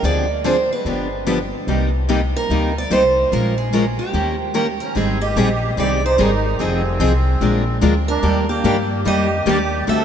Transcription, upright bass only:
0.03 D2
0.85 G1
1.67 C2
2.49 D2
2.90 C2
3.32 A#1
4.13 D#2
4.95 G#1
5.36 A#1
5.77 C2
6.18 G#1
6.59 F1
7.00 C2
7.41 A#1
7.82 D2
8.23 D#2
8.64 G2
9.05 F2
9.46 D#2
9.88 D2

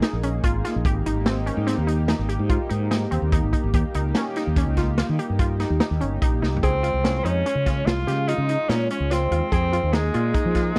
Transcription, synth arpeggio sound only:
0.03 D#4
0.24 C#4
0.44 F4
0.65 F4
0.86 G4
1.06 D#4
1.26 C4
1.46 C#4
1.67 C4
1.87 D#4
2.08 D#4
2.29 G4
2.49 F4
2.70 D#4
2.91 D#4
3.11 C4
3.32 D#4
3.53 D#4
3.74 G4
3.95 D#4
4.16 C#4
4.37 D#4
4.57 C#4
4.77 F4
4.98 F4
5.19 G4
5.39 F4
5.60 D#4
5.80 D#4
6.01 C#4
6.22 D#4
6.42 D#4
6.63 G#4
6.83 F4
7.04 C#4
7.25 D#4
7.46 C#4
7.66 F4
7.87 F4
8.07 G4
8.29 F4
8.50 D#4
8.70 D#4
8.91 C#4
9.11 F4
9.32 F4
9.52 G#4
9.73 F4
9.93 D#4
10.14 F4
10.34 D#4
10.55 F4

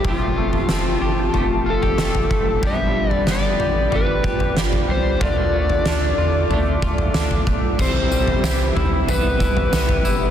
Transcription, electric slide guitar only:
0.09 F4
1.70 A4
2.67 E5
3.11 D5
3.31 D5
3.95 B4
4.91 C5
5.23 D5
7.81 C5
9.10 B4

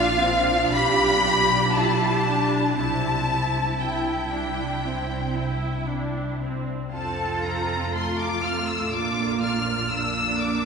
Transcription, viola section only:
Already playing: D4 F4
0.23 C4
0.75 D4 G4
1.26 G4
1.76 E4
2.26 D4
2.77 C4 E4
3.82 E4
4.34 D4
4.86 C4
5.38 E4
5.91 D4
6.43 C4
6.94 C4 F4
7.95 A3
8.93 A#3 F4
9.91 A#3 D4

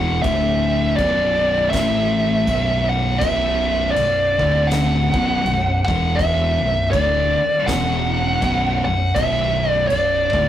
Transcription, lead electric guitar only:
Already playing: F#5
0.22 E5
0.96 D5
1.70 E5
2.89 F#5
3.18 E5
3.91 D5
4.67 F#5
5.85 F#5
6.16 E5
6.91 D5
7.66 F#5
8.85 F#5
9.14 E5
9.71 D5
9.87 D5

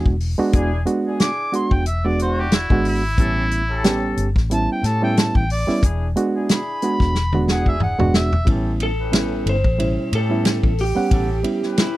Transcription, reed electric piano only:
Already playing: G#3 B3 D4 F#4
0.38 G#3 B3 D4 F#4
0.86 G#3 B3 D4 F#4
1.52 G#3 B3 D4 F#4
2.05 G#3 B3 D4 F#4
2.70 G#3 B3 D4 F#4
3.19 G3 B3 C#4 E4
3.84 G3 B3 C#4 G4
4.50 G3 B3 C#4 E4
5.02 G3 B3 C#4 E4
5.67 G3 B3 C#4 E4
6.16 G#3 B3 D4 F#4
6.82 G#3 B3 D4 F#4
7.34 G#3 B3 D4 F#4
7.99 G#3 B3 D4 F#4
8.45 G3 B3 C#4 E4
9.12 G3 B3 C#4 E4
9.78 B2 G3 C#4 E4
10.29 G3 B3 C#4 E4
10.96 G3 B3 C#4 F#5
11.43 G3 B3 C#4 E4

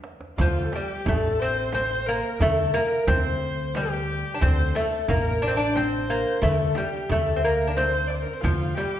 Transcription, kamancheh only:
0.38 F4
0.64 A4
0.73 G4
1.05 A4
1.39 C5
1.73 C5
2.06 A#4
2.12 C5
2.21 A#4
2.40 A4
2.76 A#4
3.09 C5
3.74 G4
4.42 C5
4.75 A4
5.09 A#4
5.42 D5
5.54 D5
5.74 C5
6.44 A4
6.76 G4
7.09 A4
7.43 A#4
7.76 C5
8.07 D5
8.15 C5
8.22 A#4
8.33 C5
8.41 F4
8.75 G4

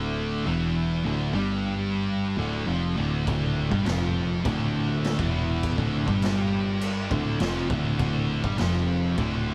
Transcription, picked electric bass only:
Already playing: D1
0.46 E1
1.05 D1
1.34 G1
2.37 D1
2.68 F1
2.98 D1
3.27 D1
3.72 G1
3.85 F1
4.45 D1
5.19 E1
5.78 D1
6.08 G1
7.11 D1
7.41 F1
7.70 D1
8.00 D1
8.44 G1
8.59 F1
9.18 D1

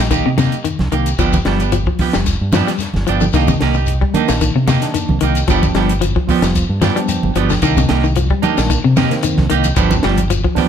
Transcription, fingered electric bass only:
0.00 A#1
0.26 C3
0.80 C2
0.92 C2
1.19 G1
1.45 G1
2.00 muted fingered electric bass stroke
2.15 F1
2.41 G2
2.95 G1
3.09 G1
3.35 C2
3.62 C2
4.16 muted fingered electric bass stroke
4.29 A#1
4.55 C3
5.10 C2
5.22 C2
5.49 G1
5.74 G1
6.29 muted fingered electric bass stroke
6.42 F1
6.69 G2
7.23 G1
7.35 G1
7.63 C2
7.90 C2
8.44 muted fingered electric bass stroke
8.58 A#1
8.85 C3
9.39 C2
9.51 C2
9.77 G1
10.05 G1
10.57 muted fingered electric bass stroke

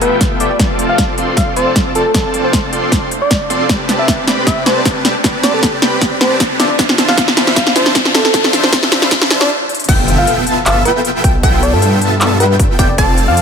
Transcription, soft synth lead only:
0.02 B4
0.40 D5
0.50 D5
0.89 F5
1.37 F5
1.56 C5
1.95 A4
2.06 A4
2.15 A4
2.44 C5
3.22 D5
3.99 E5
4.47 E5
4.66 C5
5.43 D5
5.54 A4
6.21 C5
6.59 D5
6.70 D5
7.08 F5
7.56 F5
7.75 C5
8.14 A4
8.25 A4
8.34 A4
8.64 C5
9.41 D5
10.18 F5
10.66 F5
10.85 B4
11.63 D5
11.73 A4
11.82 A4
12.40 B4
12.79 D5
12.89 D5
13.28 F5

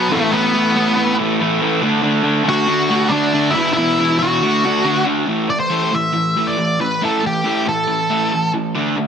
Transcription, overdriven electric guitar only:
0.10 A2 E3 A3
0.31 A2 E3 A3
0.54 A2 E3 A3
0.75 A2 E3 A3
0.97 A2 E3 A3
1.19 A2 E3 A3
1.40 A2 E3 A3
1.62 A2 E3 A3
1.83 D3 A3 D4
2.03 D3 A3 D4
2.24 D3 A3 D4
2.44 D3 A3 D4
2.67 D3 A3 D4
2.90 D3 A3 D4
3.10 D3 A3 D4
3.33 D3 A3 D4
3.54 E2 B2 E3
3.78 E2 B2 E3
4.00 E2 B2 E3
4.20 E2 B2 E3
4.42 D3 A3 D4
4.64 D3 A3 D4
4.84 D3 A3 D4
5.05 D3 A3 D4
5.26 A2 E3 A3
5.49 A2 E3
5.70 A2 E3 A3
5.92 A2 E3
6.13 A2 E3
6.37 A2 E3 A3
6.58 A2 E3
6.80 A2 E3
7.02 A2 E3 A3
7.24 A2 E3
7.44 A2 E3 A3
7.66 A2 E3
7.88 A2 E3
8.10 A2 E3 A3
8.32 A2 E3
8.54 A2 E3
8.75 D3 A3 D4
8.97 D3 A3

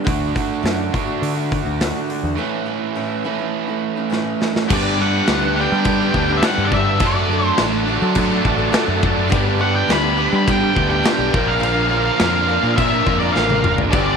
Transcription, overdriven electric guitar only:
0.05 D3 A3 D4 F#4
0.92 D3 A3 D4 F#4
2.36 A2 E3 A3 C#4
2.40 E4
3.25 A2 E3 A3 C#4 E4
4.68 G2 D3 G3 B3 D4 G4
4.99 G2 D3 G3 B3 D4 G4
5.28 G2 D3 G3 B3 D4 G4
5.58 G2 D3 G3 B3 D4 G4
5.85 G2 D3 G3 B3 D4 G4
6.14 G2 D3 G3 B3 D4 G4
6.42 G2 D3 G3 B3 D4 G4
6.71 G2 D3 G3 B3 D4 G4
6.99 F#3 A3 D4 A4
7.29 F#3 A3 D4 A4
7.59 F#3 A3 D4 A4
7.87 F#3 A3 D4 A4
8.15 F#3 A3 D4 A4
8.44 F#3 A3 D4 A4
8.71 F#3 A3 D4 A4
9.03 F#3 A3 D4 A4
9.31 G2 D3 G3 B3 D4 G4
9.60 G2 D3 G3 B3 D4 G4
9.89 G2 D3 G3 B3 D4 G4
10.16 G2 D3 G3 B3 D4 G4
10.46 G2 D3 G3 B3 D4 G4
10.75 G2 D3 G3 B3 D4 G4
11.04 G2 D3 G3 B3 D4 G4
11.33 A#2 D3 F3 A#3 D4 A#4
11.62 A#2 D3 F3 A#3 D4 A#4
11.90 A#2 D3 F3 A#3 D4 A#4
12.18 A#2 D3 F3 A#3 D4 A#4
12.46 A#2 D3 F3 A#3 D4 A#4
12.76 A#2 D3 F3 A#3 D4 A#4
13.06 A#2 D3 F3 A#3 D4 A#4
13.36 A#2 D3 F3 A#3 D4 A#4
13.63 A#2 D3 F3 A#3 D4 A#4
13.93 G2 D3 G3 B3 D4 G4

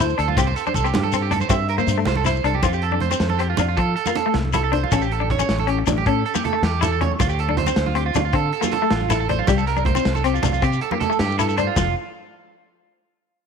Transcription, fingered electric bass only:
Already playing: D2
0.19 D2
0.37 C2
0.75 C2
0.94 G2
1.49 G2
1.87 G2
2.06 C2
2.44 C2
2.63 F2
3.20 F2
3.58 F2
3.77 F3
4.35 C2
4.92 A1
5.49 A1
5.87 A1
6.06 A2
6.62 E2
7.20 D2
7.77 D2
8.15 D2
8.33 D3
8.91 A1
9.48 C2
10.06 C2
10.43 C2
10.62 C3
11.20 G2
11.76 F1

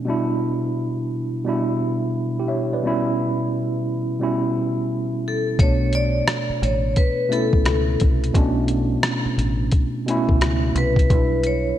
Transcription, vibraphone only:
5.28 A4
5.60 C#5
5.95 D5
6.64 C#5
6.97 B4
7.32 A4
10.78 B4
11.47 C#5

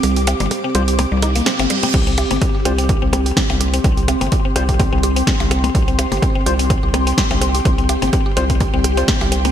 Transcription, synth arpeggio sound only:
0.04 G3
0.17 G4
0.27 C4
0.40 G3
0.51 G4
0.64 C4
0.75 G3
0.88 G4
0.99 C4
1.12 G3
1.23 D#4
1.36 A#3
1.46 C4
1.59 C4
1.70 G3
1.83 C4
1.94 C4
2.07 C4
2.18 G4
2.31 C4
2.42 C4
2.55 G4
2.65 C4
2.78 C4
2.89 G4
3.02 C4
3.13 C4
3.26 G4
3.37 C4
3.50 C4
3.60 G4
3.74 C4
3.84 C4
3.97 G4
4.08 C4
4.21 C4
4.32 G4
4.45 C4
4.56 C4
4.69 G4
4.79 C4
4.93 C4
5.03 G4
5.16 C4
5.27 C4
5.40 G4
5.51 C4
5.64 C4
5.75 G4
5.88 C4
5.99 C4
6.12 G4
6.22 C4
6.35 C4
6.46 G4
6.59 C4
6.70 C4
6.83 G4
6.94 C4
7.07 C4
7.18 G4
7.31 C4
7.42 C4
7.55 G4
7.65 C4
7.78 C4
7.89 G4
8.02 C4
8.13 C4
8.26 G4
8.37 C4
8.50 C4
8.61 G4
8.74 C4
8.97 C4
9.08 C4
9.21 G4
9.32 C4
9.45 C4

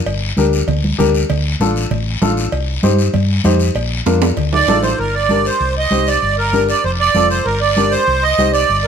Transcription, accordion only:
4.53 D5
4.83 C5
4.99 A#4
5.15 D5
5.46 C5
5.78 D#5
6.08 D5
6.38 A#4
6.70 D5
6.84 C5
7.00 D5
7.30 C5
7.45 A#4
7.61 D5
7.91 C5
8.23 D#5
8.53 D5

